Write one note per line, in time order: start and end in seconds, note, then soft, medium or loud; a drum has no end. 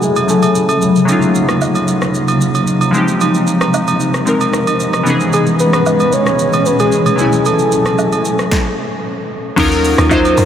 0.00 2.90 C#3 medium
0.00 0.24 F#3 medium
0.00 2.90 F#3 medium
0.00 0.25 A3 medium
0.00 1.06 A3 medium
0.00 0.26 C#4 medium
0.00 0.26 E4 medium
0.00 1.06 E4 medium
0.00 0.31 G#4 medium
0.00 0.27 G#5 medium
0.00 shaker medium
0.16 high agogo medium
0.16 shaker medium
0.27 1.04 F#3 soft
0.27 1.08 A3 soft
0.27 1.07 C#4 soft
0.27 1.09 E4 soft
0.27 0.82 A4 medium
0.27 1.09 G#5 medium
0.27 shaker medium
0.42 high agogo medium
0.42 shaker medium
0.55 shaker medium
0.69 high agogo medium
0.69 shaker medium
0.82 shaker medium
0.96 shaker medium
1.05 2.89 F#3 medium
1.05 2.90 A#3 medium
1.05 2.92 A#3 medium
1.05 2.90 C#4 medium
1.05 5.02 D#4 medium
1.05 high agogo medium
1.05 shaker medium
1.10 2.91 D#4 medium
1.10 2.92 F4 medium
1.22 shaker soft
1.35 shaker medium
1.49 cross-stick medium
1.49 high agogo medium
1.49 shaker soft
1.61 low woodblock medium
1.61 shaker medium
1.75 high agogo medium
1.75 shaker medium
1.88 shaker medium
2.02 cross-stick medium
2.02 shaker soft
2.14 shaker medium
2.28 high agogo medium
2.28 shaker medium
2.41 shaker loud
2.55 high agogo medium
2.55 shaker medium
2.67 shaker medium
2.81 high agogo medium
2.81 shaker medium
2.91 5.04 C3 medium
2.91 4.22 F3 medium
2.91 5.04 F3 medium
2.91 4.23 G#3 medium
2.91 7.15 G#3 medium
2.91 4.24 C4 medium
2.91 shaker medium
2.96 4.25 D#4 medium
2.96 4.26 G4 medium
3.08 shaker medium
3.21 high agogo medium
3.21 shaker medium
3.34 shaker soft
3.47 shaker medium
3.61 cross-stick medium
3.61 high agogo medium
3.61 shaker soft
3.74 low woodblock medium
3.74 shaker medium
3.87 high agogo medium
3.87 shaker medium
4.00 shaker medium
4.14 cross-stick medium
4.14 shaker soft
4.25 5.06 F3 medium
4.25 5.06 G#3 medium
4.25 5.06 C4 medium
4.25 5.07 D#4 medium
4.25 5.07 A#4 medium
4.25 shaker medium
4.41 high agogo medium
4.41 shaker medium
4.53 cross-stick loud
4.53 shaker loud
4.67 high agogo medium
4.67 shaker medium
4.80 shaker medium
4.93 cross-stick medium
4.93 high agogo medium
4.93 shaker medium
5.03 7.17 B2 medium
5.03 7.13 E3 medium
5.03 8.48 E3 medium
5.03 7.14 B3 medium
5.03 8.48 C#4 medium
5.03 7.15 C#4 medium
5.03 shaker medium
5.08 7.16 D#4 medium
5.08 7.17 G#4 medium
5.20 shaker medium
5.33 5.45 G#4 medium
5.33 high agogo medium
5.33 shaker medium
5.46 shaker soft
5.59 6.15 B4 loud
5.59 shaker medium
5.73 cross-stick medium
5.73 high agogo medium
5.73 shaker soft
5.86 low woodblock medium
5.86 shaker medium
6.00 high agogo medium
6.00 shaker medium
6.12 6.68 C#5 loud
6.12 shaker medium
6.26 cross-stick medium
6.26 shaker soft
6.39 shaker medium
6.53 high agogo medium
6.53 shaker medium
6.66 6.79 B4 loud
6.66 shaker medium
6.79 7.16 G#4 loud
6.79 high agogo medium
6.79 shaker medium
6.92 shaker medium
7.06 high agogo medium
7.06 shaker medium
7.16 8.50 A2 medium
7.16 8.47 F#3 medium
7.16 8.50 F#3 medium
7.16 7.25 G#3 soft
7.16 8.49 C#4 medium
7.16 7.47 G#4 medium
7.16 shaker medium
7.21 8.51 A3 medium
7.21 8.50 E4 medium
7.21 8.51 G#5 medium
7.33 shaker medium
7.45 9.05 A4 loud
7.45 high agogo medium
7.45 shaker medium
7.59 shaker soft
7.72 shaker medium
7.86 cross-stick medium
7.86 high agogo medium
7.86 shaker soft
7.98 low woodblock medium
7.98 shaker medium
8.12 high agogo medium
8.12 shaker medium
8.25 shaker medium
8.39 cross-stick medium
8.39 shaker soft
8.51 kick loud
8.51 snare medium
9.56 9.95 D#2 loud
9.56 10.00 F#3 loud
9.56 10.00 C#4 medium
9.56 10.01 D#4 medium
9.56 10.01 F4 medium
9.56 10.02 A#4 loud
9.56 kick loud
9.56 crash loud
9.56 high agogo medium
9.56 shaker medium
9.72 shaker soft
9.85 open hi-hat medium
9.85 shaker medium
9.98 10.34 D#2 loud
9.98 cross-stick loud
9.98 high agogo medium
9.98 shaker medium
10.09 10.45 F#3 loud
10.09 10.45 C#4 medium
10.09 10.45 D#4 medium
10.09 10.45 F4 medium
10.09 10.45 C5 loud
10.09 kick loud
10.09 low woodblock medium
10.09 shaker medium
10.25 high agogo medium
10.25 shaker medium
10.38 10.45 F#2 loud
10.38 open hi-hat medium
10.38 shaker medium